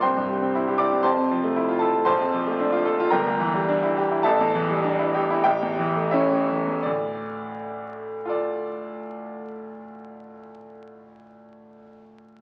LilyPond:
<<
  \new Staff \with { instrumentName = "Grand piano" } { \time 4/4 \key d \minor \tempo 4 = 93 << { <c'' g'' c'''>4. <d'' d'''>8 <c'' a'' c'''>4. <a' a''>8 | <c'' a'' c'''>2 <bes' g'' bes''>2 | <a' e'' a''>2 <g' e'' g''>4 <e' cis'' e''>4 | d''1~ |
d''1 | } \\ { r1 | r1 | r1 | r2 <f' a' d''>2~ |
<f' a' d''>1 | } >> }
  \new Staff \with { instrumentName = "Grand piano" } { \time 4/4 \key d \minor c,16 g,16 g16 c'16 e'16 g'16 e'16 c'16 f,16 c16 f16 a16 e'16 f'16 e'16 a16 | bes,,16 f,16 f16 a16 d'16 f'16 a'16 f'16 g,,16 d,16 e16 g16 d'16 e'16 g'16 e'16 | a,,16 e,16 e16 g16 d'16 e'16 g'16 e'16 a,,16 e,16 e16 a16 cis'16 a16 e16 e,16 | <d, a,>1~ |
<d, a,>1 | }
>>